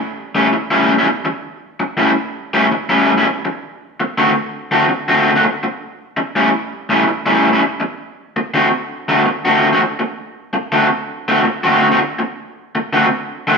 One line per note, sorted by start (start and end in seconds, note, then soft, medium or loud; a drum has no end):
0.35 0.46 A2 medium
0.35 0.46 G3 medium
0.35 0.47 C#4 medium
0.35 0.47 E4 medium
0.52 muted overdriven electric guitar stroke soft
0.71 0.93 A2 medium
0.71 0.92 G3 medium
0.71 0.92 C#4 medium
0.71 0.92 E4 medium
0.98 1.05 A2 medium
0.98 1.06 G3 medium
0.98 1.07 C#4 medium
0.98 1.07 E4 medium
1.06 muted overdriven electric guitar stroke soft
1.25 muted overdriven electric guitar stroke medium
1.80 muted overdriven electric guitar stroke medium
1.97 2.09 A2 medium
1.97 2.10 G3 medium
1.97 2.10 C#4 medium
1.97 2.10 E4 medium
2.54 2.65 A2 medium
2.54 2.65 G3 medium
2.54 2.65 C#4 medium
2.54 2.65 E4 medium
2.71 muted overdriven electric guitar stroke soft
2.89 3.11 A2 medium
2.89 3.11 G3 medium
2.89 3.11 C#4 medium
2.89 3.11 E4 medium
3.18 3.25 A2 medium
3.18 3.25 G3 medium
3.18 3.26 C#4 medium
3.18 3.26 E4 medium
3.26 muted overdriven electric guitar stroke soft
3.45 muted overdriven electric guitar stroke medium
4.00 muted overdriven electric guitar stroke medium
4.18 4.29 D3 medium
4.18 4.29 A3 medium
4.18 4.29 C4 medium
4.18 4.30 F#4 medium
4.71 4.83 D3 medium
4.71 4.83 A3 medium
4.71 4.84 C4 medium
4.71 4.84 F#4 medium
4.89 muted overdriven electric guitar stroke soft
5.08 5.30 D3 medium
5.08 5.30 A3 medium
5.08 5.30 C4 medium
5.08 5.30 F#4 medium
5.36 5.43 D3 medium
5.36 5.44 A3 medium
5.36 5.44 C4 medium
5.36 5.44 F#4 medium
5.44 muted overdriven electric guitar stroke soft
5.63 muted overdriven electric guitar stroke soft
6.17 muted overdriven electric guitar stroke medium
6.36 6.47 A2 medium
6.36 6.48 G3 medium
6.36 6.48 C#4 medium
6.36 6.48 E4 medium
6.89 7.02 A2 medium
6.89 7.02 G3 medium
6.89 7.02 C#4 medium
6.89 7.02 E4 medium
7.07 muted overdriven electric guitar stroke soft
7.26 7.48 A2 medium
7.26 7.48 G3 medium
7.26 7.48 C#4 medium
7.26 7.48 E4 medium
7.53 7.60 A2 medium
7.53 7.61 G3 medium
7.53 7.61 C#4 medium
7.53 7.61 E4 medium
7.61 muted overdriven electric guitar stroke soft
7.80 muted overdriven electric guitar stroke soft
8.36 muted overdriven electric guitar stroke medium
8.54 8.66 D3 medium
8.54 8.66 A3 medium
8.54 8.66 C4 medium
8.54 8.67 F#4 medium
9.08 9.21 D3 medium
9.08 9.21 A3 medium
9.08 9.21 C4 medium
9.08 9.21 F#4 medium
9.26 muted overdriven electric guitar stroke soft
9.45 9.67 D3 medium
9.45 9.67 A3 medium
9.45 9.67 C4 medium
9.45 9.67 F#4 medium
9.73 9.80 D3 medium
9.73 9.80 A3 medium
9.73 9.81 C4 medium
9.73 9.81 F#4 medium
9.81 muted overdriven electric guitar stroke soft
9.99 muted overdriven electric guitar stroke medium
10.53 muted overdriven electric guitar stroke soft
10.72 10.85 D3 medium
10.72 10.85 A3 medium
10.72 10.85 C4 medium
10.72 10.86 F#4 medium
11.28 11.40 D3 medium
11.28 11.40 A3 medium
11.28 11.40 C4 medium
11.28 11.41 F#4 medium
11.45 muted overdriven electric guitar stroke soft
11.64 11.86 D3 medium
11.64 11.86 A3 medium
11.64 11.86 C4 medium
11.64 11.86 F#4 medium
11.92 11.98 D3 medium
11.92 11.99 A3 medium
11.92 11.98 C4 medium
11.92 12.00 F#4 medium
11.99 muted overdriven electric guitar stroke medium
12.19 muted overdriven electric guitar stroke medium
12.75 muted overdriven electric guitar stroke soft
12.93 13.05 D3 medium
12.93 13.05 A3 medium
12.93 13.05 C4 medium
12.93 13.05 F#4 medium
13.47 13.58 D3 medium
13.47 13.58 A3 medium
13.47 13.58 C4 medium
13.47 13.58 F#4 medium